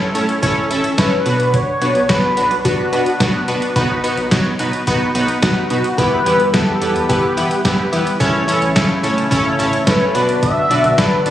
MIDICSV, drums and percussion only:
0, 0, Header, 1, 2, 480
1, 0, Start_track
1, 0, Key_signature, 2, "minor"
1, 0, Tempo, 555556
1, 1329, Time_signature, 4, 2, 24, 8
1, 9766, End_track
2, 0, Start_track
2, 0, Title_t, "Drums"
2, 130, Note_on_c, 9, 42, 80
2, 216, Note_off_c, 9, 42, 0
2, 249, Note_on_c, 9, 42, 50
2, 336, Note_off_c, 9, 42, 0
2, 370, Note_on_c, 9, 42, 81
2, 371, Note_on_c, 9, 36, 111
2, 457, Note_off_c, 9, 36, 0
2, 457, Note_off_c, 9, 42, 0
2, 611, Note_on_c, 9, 42, 73
2, 697, Note_off_c, 9, 42, 0
2, 726, Note_on_c, 9, 42, 56
2, 812, Note_off_c, 9, 42, 0
2, 847, Note_on_c, 9, 38, 111
2, 848, Note_on_c, 9, 36, 116
2, 848, Note_on_c, 9, 42, 62
2, 934, Note_off_c, 9, 36, 0
2, 934, Note_off_c, 9, 38, 0
2, 935, Note_off_c, 9, 42, 0
2, 1087, Note_on_c, 9, 42, 74
2, 1173, Note_off_c, 9, 42, 0
2, 1207, Note_on_c, 9, 42, 55
2, 1293, Note_off_c, 9, 42, 0
2, 1328, Note_on_c, 9, 42, 64
2, 1329, Note_on_c, 9, 36, 112
2, 1415, Note_off_c, 9, 36, 0
2, 1415, Note_off_c, 9, 42, 0
2, 1569, Note_on_c, 9, 42, 69
2, 1656, Note_off_c, 9, 42, 0
2, 1685, Note_on_c, 9, 42, 44
2, 1771, Note_off_c, 9, 42, 0
2, 1807, Note_on_c, 9, 38, 112
2, 1808, Note_on_c, 9, 36, 116
2, 1809, Note_on_c, 9, 42, 71
2, 1894, Note_off_c, 9, 38, 0
2, 1895, Note_off_c, 9, 36, 0
2, 1896, Note_off_c, 9, 42, 0
2, 2048, Note_on_c, 9, 42, 77
2, 2134, Note_off_c, 9, 42, 0
2, 2168, Note_on_c, 9, 42, 50
2, 2254, Note_off_c, 9, 42, 0
2, 2289, Note_on_c, 9, 42, 82
2, 2290, Note_on_c, 9, 36, 115
2, 2376, Note_off_c, 9, 42, 0
2, 2377, Note_off_c, 9, 36, 0
2, 2530, Note_on_c, 9, 42, 69
2, 2616, Note_off_c, 9, 42, 0
2, 2646, Note_on_c, 9, 42, 56
2, 2732, Note_off_c, 9, 42, 0
2, 2768, Note_on_c, 9, 36, 117
2, 2768, Note_on_c, 9, 38, 110
2, 2769, Note_on_c, 9, 42, 63
2, 2854, Note_off_c, 9, 36, 0
2, 2854, Note_off_c, 9, 38, 0
2, 2855, Note_off_c, 9, 42, 0
2, 3007, Note_on_c, 9, 42, 69
2, 3093, Note_off_c, 9, 42, 0
2, 3128, Note_on_c, 9, 42, 54
2, 3214, Note_off_c, 9, 42, 0
2, 3248, Note_on_c, 9, 36, 110
2, 3248, Note_on_c, 9, 42, 66
2, 3334, Note_off_c, 9, 42, 0
2, 3335, Note_off_c, 9, 36, 0
2, 3491, Note_on_c, 9, 42, 73
2, 3578, Note_off_c, 9, 42, 0
2, 3606, Note_on_c, 9, 42, 42
2, 3692, Note_off_c, 9, 42, 0
2, 3727, Note_on_c, 9, 38, 106
2, 3728, Note_on_c, 9, 36, 122
2, 3729, Note_on_c, 9, 42, 71
2, 3814, Note_off_c, 9, 38, 0
2, 3815, Note_off_c, 9, 36, 0
2, 3816, Note_off_c, 9, 42, 0
2, 3967, Note_on_c, 9, 42, 82
2, 4054, Note_off_c, 9, 42, 0
2, 4088, Note_on_c, 9, 42, 50
2, 4174, Note_off_c, 9, 42, 0
2, 4209, Note_on_c, 9, 42, 82
2, 4210, Note_on_c, 9, 36, 110
2, 4295, Note_off_c, 9, 42, 0
2, 4297, Note_off_c, 9, 36, 0
2, 4449, Note_on_c, 9, 42, 70
2, 4536, Note_off_c, 9, 42, 0
2, 4565, Note_on_c, 9, 42, 54
2, 4651, Note_off_c, 9, 42, 0
2, 4687, Note_on_c, 9, 38, 109
2, 4688, Note_on_c, 9, 36, 114
2, 4688, Note_on_c, 9, 42, 60
2, 4774, Note_off_c, 9, 36, 0
2, 4774, Note_off_c, 9, 38, 0
2, 4774, Note_off_c, 9, 42, 0
2, 4927, Note_on_c, 9, 42, 70
2, 5014, Note_off_c, 9, 42, 0
2, 5048, Note_on_c, 9, 42, 57
2, 5134, Note_off_c, 9, 42, 0
2, 5169, Note_on_c, 9, 36, 112
2, 5169, Note_on_c, 9, 42, 64
2, 5256, Note_off_c, 9, 36, 0
2, 5256, Note_off_c, 9, 42, 0
2, 5411, Note_on_c, 9, 42, 70
2, 5498, Note_off_c, 9, 42, 0
2, 5527, Note_on_c, 9, 42, 42
2, 5613, Note_off_c, 9, 42, 0
2, 5648, Note_on_c, 9, 38, 105
2, 5649, Note_on_c, 9, 36, 117
2, 5650, Note_on_c, 9, 42, 69
2, 5735, Note_off_c, 9, 38, 0
2, 5736, Note_off_c, 9, 36, 0
2, 5737, Note_off_c, 9, 42, 0
2, 5889, Note_on_c, 9, 42, 79
2, 5975, Note_off_c, 9, 42, 0
2, 6011, Note_on_c, 9, 42, 49
2, 6097, Note_off_c, 9, 42, 0
2, 6132, Note_on_c, 9, 36, 109
2, 6132, Note_on_c, 9, 42, 82
2, 6218, Note_off_c, 9, 36, 0
2, 6218, Note_off_c, 9, 42, 0
2, 6372, Note_on_c, 9, 42, 72
2, 6458, Note_off_c, 9, 42, 0
2, 6488, Note_on_c, 9, 42, 55
2, 6575, Note_off_c, 9, 42, 0
2, 6609, Note_on_c, 9, 36, 120
2, 6610, Note_on_c, 9, 38, 107
2, 6611, Note_on_c, 9, 42, 61
2, 6695, Note_off_c, 9, 36, 0
2, 6697, Note_off_c, 9, 38, 0
2, 6697, Note_off_c, 9, 42, 0
2, 6850, Note_on_c, 9, 42, 71
2, 6937, Note_off_c, 9, 42, 0
2, 6971, Note_on_c, 9, 42, 56
2, 7057, Note_off_c, 9, 42, 0
2, 7090, Note_on_c, 9, 36, 116
2, 7090, Note_on_c, 9, 42, 64
2, 7176, Note_off_c, 9, 36, 0
2, 7176, Note_off_c, 9, 42, 0
2, 7333, Note_on_c, 9, 42, 73
2, 7419, Note_off_c, 9, 42, 0
2, 7447, Note_on_c, 9, 42, 42
2, 7534, Note_off_c, 9, 42, 0
2, 7568, Note_on_c, 9, 38, 111
2, 7569, Note_on_c, 9, 36, 120
2, 7570, Note_on_c, 9, 42, 73
2, 7655, Note_off_c, 9, 36, 0
2, 7655, Note_off_c, 9, 38, 0
2, 7657, Note_off_c, 9, 42, 0
2, 7810, Note_on_c, 9, 42, 76
2, 7897, Note_off_c, 9, 42, 0
2, 7931, Note_on_c, 9, 42, 51
2, 8017, Note_off_c, 9, 42, 0
2, 8052, Note_on_c, 9, 36, 114
2, 8053, Note_on_c, 9, 42, 82
2, 8138, Note_off_c, 9, 36, 0
2, 8139, Note_off_c, 9, 42, 0
2, 8292, Note_on_c, 9, 42, 73
2, 8379, Note_off_c, 9, 42, 0
2, 8407, Note_on_c, 9, 42, 56
2, 8493, Note_off_c, 9, 42, 0
2, 8528, Note_on_c, 9, 36, 118
2, 8528, Note_on_c, 9, 38, 113
2, 8529, Note_on_c, 9, 42, 65
2, 8615, Note_off_c, 9, 36, 0
2, 8615, Note_off_c, 9, 38, 0
2, 8615, Note_off_c, 9, 42, 0
2, 8768, Note_on_c, 9, 42, 69
2, 8855, Note_off_c, 9, 42, 0
2, 8888, Note_on_c, 9, 42, 58
2, 8975, Note_off_c, 9, 42, 0
2, 9009, Note_on_c, 9, 36, 114
2, 9009, Note_on_c, 9, 42, 64
2, 9095, Note_off_c, 9, 36, 0
2, 9096, Note_off_c, 9, 42, 0
2, 9251, Note_on_c, 9, 42, 73
2, 9338, Note_off_c, 9, 42, 0
2, 9366, Note_on_c, 9, 42, 45
2, 9452, Note_off_c, 9, 42, 0
2, 9487, Note_on_c, 9, 38, 108
2, 9488, Note_on_c, 9, 36, 121
2, 9489, Note_on_c, 9, 42, 70
2, 9574, Note_off_c, 9, 38, 0
2, 9575, Note_off_c, 9, 36, 0
2, 9576, Note_off_c, 9, 42, 0
2, 9727, Note_on_c, 9, 42, 80
2, 9766, Note_off_c, 9, 42, 0
2, 9766, End_track
0, 0, End_of_file